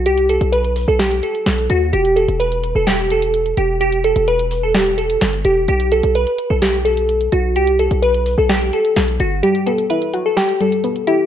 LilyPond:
<<
  \new Staff \with { instrumentName = "Synth keys" } { \time 4/4 \key e \minor \tempo 4 = 128 g'8 a'8 b'8. a'16 g'8 a'4 fis'8 | g'8 a'8 b'8. a'16 g'8 a'4 g'8 | g'8 a'8 b'8. a'16 g'8 a'4 g'8 | g'8 a'8 b'8. a'16 g'8 a'4 fis'8 |
g'8 a'8 b'8. a'16 g'8 a'4 fis'8 | g'8 a'8 b'8. a'16 g'8 a'4 g'8 | }
  \new Staff \with { instrumentName = "Synth pluck" } { \time 4/4 \key e \minor r1 | r1 | r1 | r1 |
r1 | g8 b8 e'8 fis'8 g'8 g8 b8 e'8 | }
  \new Staff \with { instrumentName = "808-style bass" } { \clef bass \time 4/4 \key e \minor c,8. b,,4 b,,8. r8 b,,8 dis,8 | e,,8. e,,4 e,,4.~ e,,16 e,,8~ | e,,8. e,,2~ e,,16 g,,8 e,,8 | b,,8. b,,8 r8 b,,4.~ b,,16 b,,8 |
c,8. b,,4 b,,8. r8 b,,8 g,,8 | r1 | }
  \new DrumStaff \with { instrumentName = "Drums" } \drummode { \time 4/4 hh16 hh16 hh16 hh16 hh16 hh16 hho8 <hh sn>16 hh16 hh16 hh16 <hh sn>16 hh16 hh8 | hh16 hh16 hh16 hh16 hh16 hh16 hh8 <hh sn>16 hh16 hh16 hh16 hh16 hh16 hh8 | hh16 hh16 hh16 hh16 hh16 hh16 hho8 <hh sn>16 hh16 hh16 hh16 <hh sn>16 hh16 hh8 | hh16 hh16 hh16 hh16 hh16 hh16 hh8 <hh sn>16 hh16 hh16 hh16 hh16 hh16 hh8 |
hh16 hh16 hh16 hh16 hh16 hh16 hho8 <hh sn>16 hh16 hh16 hh16 <hh sn>16 hh16 hh8 | hh16 hh16 hh16 hh16 hh16 hh16 hh8 <hh sn>16 hh16 hh16 hh16 hh16 hh16 hh8 | }
>>